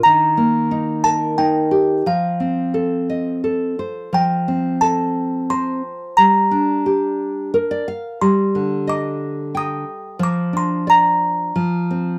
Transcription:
<<
  \new Staff \with { instrumentName = "Music box" } { \time 3/4 \key f \mixolydian \tempo 4 = 88 bes''4. a''8 g''4 | f''2 r4 | g''4 a''4 c'''4 | bes''2 r4 |
c'''4 d'''4 ees'''4 | d'''8 c'''8 bes''4 r4 | }
  \new Staff \with { instrumentName = "Nylon-string guitar" } { \time 3/4 \key f \mixolydian << { r2. | r2. | r2. | r2 bes'16 d''16 f''8 |
r2. | r2. | } \\ { ees8 bes8 ees'8 bes'8 ees'8 g'8 | f8 c'8 a'8 ees''8 a'8 c''8 | f8 c'8 a'4 c''4 | g8 d'8 g'4 bes'4 |
g8 d8 ees''4 g''4 | f8 d'8 d''4 f8 c'8 | } >> }
>>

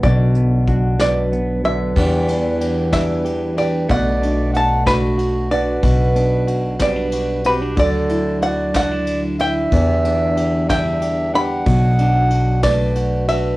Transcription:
<<
  \new Staff \with { instrumentName = "Five-string banjo" } { \time 6/8 \key b \phrygian \tempo 4. = 62 << { r4. d''4 e''8~ | e''4. e''4 d''8 | fis''4 a''8 b'4 d''8~ | d''4. d''4 b'8 |
d''4 fis''8 fis''4 g''8~ | g''4. g''4 b''8~ | b''4. d''4 e''8 | } \\ { d''2~ d''8 r8 | r2. | r2. | r2. |
r2. | r2. | r2. | } >> }
  \new Staff \with { instrumentName = "Clarinet" } { \time 6/8 \key b \phrygian r4. b'4 b'8~ | b'4. b'4 b'8 | d''4 fis''8 fis'4 b'8~ | b'4. b'4 g'8 |
a'4 d''8 d''4 e''8~ | e''4. e''4 fis''8~ | fis''4. b'4 b'8 | }
  \new Staff \with { instrumentName = "Clean electric guitar" } { \time 6/8 \key b \phrygian <fis b d'>8 b8 d'8 fis8 b8 fis8 | <b g'>8 d'8 g'8 d'8 g'8 d'8 | <a fis'>8 d'8 fis'8 d'8 fis'8 d'8 | fis'8 d'8 fis'8 c'16 d'16 fis'8 c'16 d'16 |
<fis fis'>8 e'8 fis'8 d'16 e'8. e'8 | <b g'>8 d'8 g'8 d'8 g'8 d'8 | <fis fis'>8 d'8 fis'8 d'8 fis'8 d'8 | }
  \new Staff \with { instrumentName = "Nylon-string guitar" } { \time 6/8 \key b \phrygian << { d4 fis'2 | <e g d' g'>8 d'4 g4 g'8 | r8 d'4 a4 fis'8 | r8 b4 g4 fis'8 |
r8 e'4 d'4 e'8~ | e'8 d'4 g4 g'8 | r8 d'4 a4 fis'8 | } \\ { b,4. b,8 r8 d8 | e,2. | b,2. | b,2. |
d2. | e,2. | b,2. | } >> }
  \new Staff \with { instrumentName = "Upright bass" } { \clef bass \time 6/8 \key b \phrygian b,,2. | e,2. | b,,2. | b,,2. |
d,2. | e,2. | b,,2. | }
  \new DrumStaff \with { instrumentName = "Drums" } \drummode { \time 6/8 <hh bd>8 hh8 <hh bd>8 <hh sn>8 hh8 hh8 | <cymc bd>8 cymr8 cymr8 <bd cymr sn>8 cymr8 cymr8 | <bd cymr>8 cymr8 cymr8 <bd cymr sn>8 cymr8 cymr8 | <bd cymr>8 cymr8 cymr8 <bd cymr sn>8 cymr8 cymr8 |
<bd cymr>8 cymr8 cymr8 <bd cymr sn>8 cymr8 cymr8 | <bd cymr>8 cymr8 cymr8 <bd cymr sn>8 cymr8 cymr8 | <bd cymr>8 cymr8 cymr8 <bd cymr sn>8 cymr8 cymr8 | }
>>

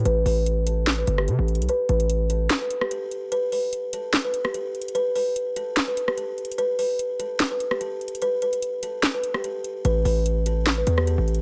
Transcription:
<<
  \new Staff \with { instrumentName = "Kalimba" } { \time 4/4 \key c \major \tempo 4 = 147 b'8 b'4 a'8. b'8 g'16 a'4 | b'8 b'4 a'8. b'8 g'16 a'4 | b'8 b'4 a'8. b'8 g'16 a'4 | b'8 b'4 a'8. b'8 g'16 a'4 |
b'8 b'4 a'8. b'8 g'16 a'4 | b'8 b'4 a'8. b'8 g'16 a'4 | b'8 b'4 a'8. b'8 g'16 a'4 | }
  \new Staff \with { instrumentName = "808-style bass" } { \clef bass \time 4/4 \key c \major a,,8 a,,2 g,,8 c16 a,,8 b,,16 | r8 a,,4. r2 | r1 | r1 |
r1 | r1 | a,,8 a,,2 e,8. a,,8. | }
  \new DrumStaff \with { instrumentName = "Drums" } \drummode { \time 4/4 hh8 hho8 hh8 hh8 <hc hh sn>8 hh16 ss16 \tuplet 3/2 { hh16 r16 r16 hh16 hh16 hh16 } | hh8 <hh hho>16 hh16 hh8 hh8 <hc hh sn>8 hh16 ss16 hh8 hh8 | hh8 hho8 hh8 hh8 <hc hh sn>8 hh16 ss16 \tuplet 3/2 { hh16 r16 r16 hh16 hh16 hh16 } | hh8 hho8 hh8 hh8 <hc hh sn>8 hh16 ss16 \tuplet 3/2 { hh16 r16 r16 hh16 hh16 hh16 } |
hh8 hho8 hh8 hh8 <hc hh sn>8 hh16 ss16 \tuplet 3/2 { hh16 r16 r16 hh16 hh16 hh16 } | hh8 <hh hho>16 hh16 hh8 hh8 <hc hh sn>8 hh16 ss16 hh8 hh8 | hh8 hho8 hh8 hh8 <hc hh sn>8 hh16 ss16 \tuplet 3/2 { hh16 r16 r16 hh16 hh16 r16 } | }
>>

